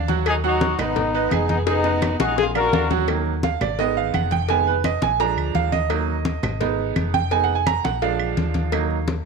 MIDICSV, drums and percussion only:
0, 0, Header, 1, 2, 480
1, 0, Start_track
1, 0, Key_signature, -6, "minor"
1, 0, Tempo, 352319
1, 358, Time_signature, 4, 2, 24, 8
1, 12605, End_track
2, 0, Start_track
2, 0, Title_t, "Drums"
2, 114, Note_on_c, 9, 56, 70
2, 127, Note_on_c, 9, 63, 89
2, 250, Note_off_c, 9, 56, 0
2, 263, Note_off_c, 9, 63, 0
2, 354, Note_on_c, 9, 56, 114
2, 361, Note_on_c, 9, 75, 73
2, 362, Note_on_c, 9, 63, 36
2, 490, Note_off_c, 9, 56, 0
2, 497, Note_off_c, 9, 75, 0
2, 499, Note_off_c, 9, 63, 0
2, 596, Note_on_c, 9, 63, 35
2, 733, Note_off_c, 9, 63, 0
2, 833, Note_on_c, 9, 63, 108
2, 837, Note_on_c, 9, 56, 72
2, 969, Note_off_c, 9, 63, 0
2, 973, Note_off_c, 9, 56, 0
2, 1071, Note_on_c, 9, 63, 36
2, 1071, Note_on_c, 9, 64, 86
2, 1076, Note_on_c, 9, 56, 80
2, 1079, Note_on_c, 9, 75, 71
2, 1207, Note_off_c, 9, 63, 0
2, 1207, Note_off_c, 9, 64, 0
2, 1212, Note_off_c, 9, 56, 0
2, 1216, Note_off_c, 9, 75, 0
2, 1308, Note_on_c, 9, 56, 105
2, 1315, Note_on_c, 9, 63, 34
2, 1315, Note_on_c, 9, 64, 70
2, 1444, Note_off_c, 9, 56, 0
2, 1451, Note_off_c, 9, 63, 0
2, 1451, Note_off_c, 9, 64, 0
2, 1548, Note_on_c, 9, 63, 37
2, 1684, Note_off_c, 9, 63, 0
2, 1788, Note_on_c, 9, 56, 73
2, 1791, Note_on_c, 9, 63, 87
2, 1799, Note_on_c, 9, 75, 70
2, 1925, Note_off_c, 9, 56, 0
2, 1927, Note_off_c, 9, 63, 0
2, 1936, Note_off_c, 9, 75, 0
2, 2032, Note_on_c, 9, 56, 69
2, 2039, Note_on_c, 9, 63, 87
2, 2168, Note_off_c, 9, 56, 0
2, 2175, Note_off_c, 9, 63, 0
2, 2271, Note_on_c, 9, 56, 106
2, 2271, Note_on_c, 9, 60, 95
2, 2283, Note_on_c, 9, 63, 37
2, 2408, Note_off_c, 9, 56, 0
2, 2408, Note_off_c, 9, 60, 0
2, 2419, Note_off_c, 9, 63, 0
2, 2508, Note_on_c, 9, 60, 90
2, 2521, Note_on_c, 9, 63, 39
2, 2644, Note_off_c, 9, 60, 0
2, 2657, Note_off_c, 9, 63, 0
2, 2752, Note_on_c, 9, 56, 72
2, 2752, Note_on_c, 9, 60, 80
2, 2756, Note_on_c, 9, 63, 102
2, 2759, Note_on_c, 9, 75, 70
2, 2888, Note_off_c, 9, 56, 0
2, 2888, Note_off_c, 9, 60, 0
2, 2892, Note_off_c, 9, 63, 0
2, 2895, Note_off_c, 9, 75, 0
2, 2994, Note_on_c, 9, 63, 98
2, 2997, Note_on_c, 9, 56, 76
2, 2997, Note_on_c, 9, 60, 99
2, 3131, Note_off_c, 9, 63, 0
2, 3134, Note_off_c, 9, 56, 0
2, 3134, Note_off_c, 9, 60, 0
2, 3237, Note_on_c, 9, 63, 35
2, 3243, Note_on_c, 9, 56, 102
2, 3243, Note_on_c, 9, 61, 102
2, 3373, Note_off_c, 9, 63, 0
2, 3379, Note_off_c, 9, 56, 0
2, 3379, Note_off_c, 9, 61, 0
2, 3477, Note_on_c, 9, 75, 71
2, 3480, Note_on_c, 9, 61, 93
2, 3481, Note_on_c, 9, 63, 35
2, 3613, Note_off_c, 9, 75, 0
2, 3617, Note_off_c, 9, 61, 0
2, 3617, Note_off_c, 9, 63, 0
2, 3719, Note_on_c, 9, 63, 92
2, 3723, Note_on_c, 9, 56, 71
2, 3723, Note_on_c, 9, 61, 101
2, 3855, Note_off_c, 9, 63, 0
2, 3860, Note_off_c, 9, 56, 0
2, 3860, Note_off_c, 9, 61, 0
2, 3959, Note_on_c, 9, 56, 67
2, 3959, Note_on_c, 9, 61, 83
2, 3961, Note_on_c, 9, 63, 89
2, 4096, Note_off_c, 9, 56, 0
2, 4096, Note_off_c, 9, 61, 0
2, 4097, Note_off_c, 9, 63, 0
2, 4193, Note_on_c, 9, 63, 34
2, 4195, Note_on_c, 9, 56, 113
2, 4202, Note_on_c, 9, 75, 68
2, 4329, Note_off_c, 9, 63, 0
2, 4331, Note_off_c, 9, 56, 0
2, 4338, Note_off_c, 9, 75, 0
2, 4437, Note_on_c, 9, 63, 36
2, 4574, Note_off_c, 9, 63, 0
2, 4676, Note_on_c, 9, 63, 99
2, 4682, Note_on_c, 9, 56, 72
2, 4812, Note_off_c, 9, 63, 0
2, 4818, Note_off_c, 9, 56, 0
2, 4918, Note_on_c, 9, 63, 36
2, 4918, Note_on_c, 9, 64, 86
2, 4919, Note_on_c, 9, 56, 73
2, 4925, Note_on_c, 9, 75, 69
2, 5054, Note_off_c, 9, 63, 0
2, 5054, Note_off_c, 9, 64, 0
2, 5055, Note_off_c, 9, 56, 0
2, 5061, Note_off_c, 9, 75, 0
2, 5159, Note_on_c, 9, 63, 32
2, 5160, Note_on_c, 9, 56, 94
2, 5295, Note_off_c, 9, 63, 0
2, 5296, Note_off_c, 9, 56, 0
2, 5406, Note_on_c, 9, 63, 38
2, 5542, Note_off_c, 9, 63, 0
2, 5638, Note_on_c, 9, 56, 68
2, 5641, Note_on_c, 9, 63, 89
2, 5645, Note_on_c, 9, 75, 69
2, 5774, Note_off_c, 9, 56, 0
2, 5777, Note_off_c, 9, 63, 0
2, 5781, Note_off_c, 9, 75, 0
2, 5872, Note_on_c, 9, 56, 67
2, 5885, Note_on_c, 9, 63, 81
2, 6009, Note_off_c, 9, 56, 0
2, 6021, Note_off_c, 9, 63, 0
2, 6111, Note_on_c, 9, 56, 108
2, 6132, Note_on_c, 9, 63, 35
2, 6247, Note_off_c, 9, 56, 0
2, 6268, Note_off_c, 9, 63, 0
2, 6366, Note_on_c, 9, 63, 36
2, 6502, Note_off_c, 9, 63, 0
2, 6597, Note_on_c, 9, 63, 97
2, 6600, Note_on_c, 9, 56, 70
2, 6606, Note_on_c, 9, 75, 70
2, 6733, Note_off_c, 9, 63, 0
2, 6736, Note_off_c, 9, 56, 0
2, 6742, Note_off_c, 9, 75, 0
2, 6837, Note_on_c, 9, 56, 77
2, 6840, Note_on_c, 9, 63, 95
2, 6973, Note_off_c, 9, 56, 0
2, 6977, Note_off_c, 9, 63, 0
2, 7083, Note_on_c, 9, 56, 105
2, 7083, Note_on_c, 9, 63, 35
2, 7219, Note_off_c, 9, 56, 0
2, 7219, Note_off_c, 9, 63, 0
2, 7319, Note_on_c, 9, 63, 36
2, 7326, Note_on_c, 9, 75, 67
2, 7455, Note_off_c, 9, 63, 0
2, 7463, Note_off_c, 9, 75, 0
2, 7558, Note_on_c, 9, 56, 73
2, 7560, Note_on_c, 9, 63, 86
2, 7694, Note_off_c, 9, 56, 0
2, 7696, Note_off_c, 9, 63, 0
2, 7798, Note_on_c, 9, 56, 68
2, 7800, Note_on_c, 9, 63, 90
2, 7934, Note_off_c, 9, 56, 0
2, 7937, Note_off_c, 9, 63, 0
2, 8037, Note_on_c, 9, 56, 106
2, 8041, Note_on_c, 9, 75, 67
2, 8042, Note_on_c, 9, 63, 37
2, 8173, Note_off_c, 9, 56, 0
2, 8177, Note_off_c, 9, 75, 0
2, 8178, Note_off_c, 9, 63, 0
2, 8280, Note_on_c, 9, 63, 36
2, 8417, Note_off_c, 9, 63, 0
2, 8517, Note_on_c, 9, 63, 107
2, 8521, Note_on_c, 9, 56, 67
2, 8653, Note_off_c, 9, 63, 0
2, 8657, Note_off_c, 9, 56, 0
2, 8761, Note_on_c, 9, 63, 35
2, 8761, Note_on_c, 9, 64, 84
2, 8766, Note_on_c, 9, 56, 76
2, 8770, Note_on_c, 9, 75, 68
2, 8897, Note_off_c, 9, 63, 0
2, 8897, Note_off_c, 9, 64, 0
2, 8902, Note_off_c, 9, 56, 0
2, 8906, Note_off_c, 9, 75, 0
2, 9000, Note_on_c, 9, 56, 101
2, 9005, Note_on_c, 9, 63, 35
2, 9005, Note_on_c, 9, 64, 69
2, 9137, Note_off_c, 9, 56, 0
2, 9141, Note_off_c, 9, 63, 0
2, 9141, Note_off_c, 9, 64, 0
2, 9248, Note_on_c, 9, 63, 35
2, 9384, Note_off_c, 9, 63, 0
2, 9482, Note_on_c, 9, 56, 75
2, 9483, Note_on_c, 9, 75, 65
2, 9484, Note_on_c, 9, 63, 90
2, 9618, Note_off_c, 9, 56, 0
2, 9620, Note_off_c, 9, 63, 0
2, 9620, Note_off_c, 9, 75, 0
2, 9727, Note_on_c, 9, 63, 87
2, 9730, Note_on_c, 9, 56, 68
2, 9863, Note_off_c, 9, 63, 0
2, 9866, Note_off_c, 9, 56, 0
2, 9962, Note_on_c, 9, 56, 108
2, 9969, Note_on_c, 9, 63, 35
2, 10099, Note_off_c, 9, 56, 0
2, 10105, Note_off_c, 9, 63, 0
2, 10211, Note_on_c, 9, 63, 35
2, 10347, Note_off_c, 9, 63, 0
2, 10442, Note_on_c, 9, 75, 69
2, 10445, Note_on_c, 9, 63, 100
2, 10450, Note_on_c, 9, 56, 70
2, 10579, Note_off_c, 9, 75, 0
2, 10582, Note_off_c, 9, 63, 0
2, 10586, Note_off_c, 9, 56, 0
2, 10690, Note_on_c, 9, 56, 69
2, 10693, Note_on_c, 9, 63, 97
2, 10826, Note_off_c, 9, 56, 0
2, 10829, Note_off_c, 9, 63, 0
2, 10927, Note_on_c, 9, 56, 100
2, 10932, Note_on_c, 9, 63, 36
2, 11064, Note_off_c, 9, 56, 0
2, 11068, Note_off_c, 9, 63, 0
2, 11165, Note_on_c, 9, 75, 71
2, 11168, Note_on_c, 9, 63, 36
2, 11301, Note_off_c, 9, 75, 0
2, 11304, Note_off_c, 9, 63, 0
2, 11405, Note_on_c, 9, 56, 74
2, 11408, Note_on_c, 9, 63, 89
2, 11541, Note_off_c, 9, 56, 0
2, 11544, Note_off_c, 9, 63, 0
2, 11638, Note_on_c, 9, 56, 63
2, 11646, Note_on_c, 9, 63, 89
2, 11774, Note_off_c, 9, 56, 0
2, 11783, Note_off_c, 9, 63, 0
2, 11883, Note_on_c, 9, 56, 112
2, 11894, Note_on_c, 9, 63, 38
2, 11894, Note_on_c, 9, 75, 68
2, 12019, Note_off_c, 9, 56, 0
2, 12030, Note_off_c, 9, 63, 0
2, 12030, Note_off_c, 9, 75, 0
2, 12133, Note_on_c, 9, 63, 38
2, 12270, Note_off_c, 9, 63, 0
2, 12364, Note_on_c, 9, 56, 72
2, 12366, Note_on_c, 9, 63, 100
2, 12501, Note_off_c, 9, 56, 0
2, 12502, Note_off_c, 9, 63, 0
2, 12605, End_track
0, 0, End_of_file